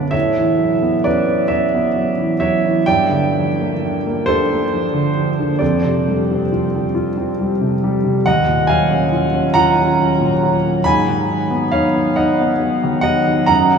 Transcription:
0.00 0.17 F#2 soft
0.00 0.16 D3 soft
0.00 0.16 B3 soft
0.00 0.16 C#4 soft
0.00 0.16 B4 medium
0.00 0.13 D5 medium
0.11 2.81 A2 medium
0.11 1.01 C#5 medium
0.11 1.05 E5 medium
0.36 0.74 E3 soft
0.58 0.96 F#3 soft
0.82 1.19 B3 soft
1.04 1.42 C#4 soft
1.04 1.47 B4 medium
1.04 1.50 D5 medium
1.27 1.63 B3 soft
1.48 1.86 C#4 soft
1.48 2.35 C#5 medium
1.48 2.38 E5 medium
1.74 2.09 B3 soft
1.96 2.31 F#3 soft
2.17 2.54 E3 soft
2.40 2.77 F#3 soft
2.40 2.83 C#5 medium
2.40 2.86 E5 medium
2.65 2.87 E3 soft
2.86 5.58 G2 medium
2.86 4.24 D5 medium
2.86 4.27 G5 loud
3.09 3.48 D3 soft
3.35 3.72 F3 soft
3.60 3.97 A#3 soft
3.85 4.20 D4 soft
4.07 4.42 A#3 soft
4.26 4.64 D4 soft
4.26 5.57 A4 medium
4.26 5.60 C5 medium
4.50 4.85 A#3 soft
4.73 5.08 F3 soft
4.93 5.29 D3 soft
5.17 5.52 F3 soft
5.40 5.62 D3 soft
5.59 8.20 F2 medium
5.59 6.45 A4 medium
5.59 6.49 D5 medium
5.85 6.20 C3 soft
6.08 6.42 G3 soft
6.31 6.65 C4 soft
6.52 6.85 F4 soft
6.75 7.08 C4 soft
6.95 7.29 F4 medium
7.17 7.51 C4 soft
7.41 7.74 G3 soft
7.61 7.95 C3 soft
7.84 8.17 G3 medium
8.04 8.25 C3 soft
8.26 10.82 D#2 medium
8.26 8.66 D#5 medium
8.26 8.68 F#5 loud
8.48 8.81 A#2 soft
8.67 9.03 F#3 soft
8.67 9.51 F5 medium
8.67 9.54 G#5 medium
8.90 9.24 C#4 soft
9.12 9.46 F4 soft
9.33 9.68 C#4 soft
9.54 9.90 F4 medium
9.54 10.81 F#5 medium
9.54 10.84 A#5 loud
9.77 10.11 C#4 soft
9.99 10.33 F#3 soft
10.20 10.54 A#2 soft
10.43 10.77 F#3 medium
10.65 10.86 A#2 soft
10.84 13.47 G#2 medium
10.84 11.69 G#5 medium
10.84 11.72 B5 loud
11.08 11.43 D#3 soft
11.30 11.64 F#3 soft
11.50 11.85 B3 soft
11.72 12.08 D#4 soft
11.72 12.13 C#5 medium
11.72 12.16 F5 medium
11.94 12.29 B3 soft
12.16 12.52 D#4 medium
12.16 13.01 D#5 medium
12.16 13.00 F#5 medium
12.40 12.74 B3 soft
12.60 12.96 F#3 soft
12.83 13.19 D#3 soft
13.01 13.40 F#3 soft
13.01 13.46 D#5 medium
13.01 13.46 F#5 loud
13.27 13.50 D#3 soft
13.46 13.78 F#2 medium
13.46 13.78 F#5 medium
13.46 13.78 A#5 loud
13.73 13.78 C#3 soft

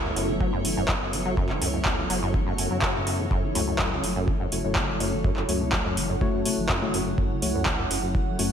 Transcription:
0.00 0.13 C#2 loud
0.00 8.52 C#3 medium
0.00 8.52 F#3 medium
0.00 8.52 A3 medium
0.00 3.29 B3 medium
0.00 8.52 E4 medium
0.00 8.52 A4 medium
0.00 8.52 C#5 medium
0.00 3.64 E5 medium
0.05 0.11 F#2 medium
0.16 0.62 F#1 medium
0.16 0.30 F#2 medium
0.16 open hi-hat medium
0.29 0.39 F#3 medium
0.40 0.51 F#3 loud
0.40 kick loud
0.53 0.66 F#2 loud
0.65 0.75 F#1 medium
0.65 0.75 E3 medium
0.65 open hi-hat loud
0.77 0.87 E1 loud
0.77 0.84 F#2 loud
0.88 0.96 F#2 medium
0.88 kick loud
0.88 clap loud
1.01 1.47 F#1 loud
1.01 1.15 F#2 medium
1.13 1.23 F#3 medium
1.13 open hi-hat medium
1.25 1.35 F#3 loud
1.37 1.51 F#2 loud
1.37 kick loud
1.49 1.60 E1 loud
1.49 1.59 E3 medium
1.49 clap soft
1.61 2.07 C#2 medium
1.61 1.68 F#2 loud
1.61 open hi-hat loud
1.74 1.80 F#2 medium
1.85 2.00 F#2 medium
1.85 kick loud
1.85 clap loud
1.98 2.08 F#3 medium
2.10 2.34 F#1 loud
2.10 2.20 F#3 loud
2.10 open hi-hat medium
2.22 2.36 F#2 loud
2.34 2.68 F#1 medium
2.34 2.44 E3 medium
2.34 kick loud
2.34 swell medium
2.47 2.53 F#2 loud
2.58 2.69 F#2 medium
2.58 open hi-hat loud
2.71 3.28 F#2 medium
2.71 2.77 F#3 medium
2.82 2.96 C#3 medium
2.82 kick loud
2.82 clap loud
2.95 3.01 F#2 medium
3.07 3.21 F#2 medium
3.07 open hi-hat medium
3.19 3.26 F#3 loud
3.31 3.52 F#1 loud
3.31 3.45 F#2 loud
3.31 8.52 E4 medium
3.31 kick loud
3.43 3.53 E3 medium
3.55 4.01 C#2 loud
3.55 3.62 F#2 loud
3.55 4.49 A3 medium
3.55 4.49 E4 medium
3.55 4.49 F#4 medium
3.55 4.49 C#5 medium
3.55 open hi-hat loud
3.62 8.52 F#5 medium
3.68 3.74 F#2 medium
3.79 3.93 F#2 medium
3.79 kick loud
3.79 clap loud
3.92 4.05 C#3 medium
4.04 4.49 F#1 loud
4.04 4.14 F#3 loud
4.04 open hi-hat medium
4.16 4.29 F#2 loud
4.28 4.38 E3 medium
4.28 kick loud
4.40 4.47 F#2 loud
4.52 4.62 F#1 medium
4.52 4.59 F#2 medium
4.52 4.63 A3 medium
4.52 4.63 E4 medium
4.52 4.63 F#4 medium
4.52 4.63 C#5 medium
4.52 open hi-hat loud
4.64 4.74 E1 loud
4.64 4.78 F#2 medium
4.64 4.98 A3 medium
4.64 4.98 E4 medium
4.64 4.98 F#4 medium
4.64 4.98 C#5 loud
4.76 4.90 C#3 medium
4.76 kick loud
4.76 clap loud
4.88 5.34 F#1 loud
4.88 4.98 F#3 loud
5.00 5.14 F#2 loud
5.00 5.19 A3 medium
5.00 5.19 E4 medium
5.00 5.19 F#4 medium
5.00 5.19 C#5 medium
5.00 open hi-hat medium
5.13 5.22 E3 medium
5.24 5.31 F#2 loud
5.24 kick loud
5.37 5.47 E1 loud
5.37 5.43 F#2 medium
5.37 clap soft
5.49 5.94 C#2 loud
5.49 5.63 F#2 medium
5.49 5.67 A3 medium
5.49 5.67 E4 medium
5.49 5.67 F#4 medium
5.49 5.67 C#5 medium
5.49 open hi-hat loud
5.61 5.74 C#3 medium
5.72 5.83 F#3 loud
5.72 kick loud
5.72 clap loud
5.85 5.99 F#2 loud
5.97 6.43 F#1 loud
5.97 6.07 E3 medium
5.97 open hi-hat loud
6.10 6.16 F#2 loud
6.21 6.28 F#2 medium
6.21 6.43 A3 medium
6.21 6.43 E4 medium
6.21 6.43 F#4 medium
6.21 6.43 C#5 loud
6.21 kick loud
6.34 6.47 F#2 medium
6.45 6.59 C#3 medium
6.45 6.57 A3 medium
6.45 6.57 E4 medium
6.45 6.57 F#4 medium
6.45 6.57 C#5 medium
6.45 open hi-hat loud
6.58 7.15 F#1 medium
6.58 6.68 F#3 loud
6.69 6.84 F#2 loud
6.69 kick loud
6.69 clap loud
6.82 6.92 E3 medium
6.82 7.39 A3 medium
6.82 7.39 E4 medium
6.82 7.39 F#4 medium
6.82 7.39 C#5 loud
6.94 7.01 F#2 loud
6.94 open hi-hat medium
7.06 7.13 F#2 medium
7.18 7.39 F#1 medium
7.18 7.32 F#2 medium
7.18 kick loud
7.31 7.44 C#3 medium
7.42 7.88 C#2 loud
7.42 7.53 F#3 loud
7.42 8.36 A3 medium
7.42 8.36 E4 medium
7.42 8.36 F#4 medium
7.42 8.36 C#5 medium
7.42 open hi-hat loud
7.55 7.68 F#2 loud
7.66 7.77 E3 medium
7.66 kick loud
7.66 clap loud
7.79 7.85 F#2 loud
7.91 8.36 F#1 loud
7.91 7.98 F#2 medium
7.91 open hi-hat loud
8.03 8.16 F#2 medium
8.15 8.29 C#3 medium
8.15 kick loud
8.27 8.37 F#3 loud
8.39 8.50 F#1 medium
8.39 8.52 F#2 loud
8.39 8.50 A3 medium
8.39 8.50 E4 medium
8.39 8.50 F#4 medium
8.39 8.50 C#5 medium
8.39 open hi-hat loud

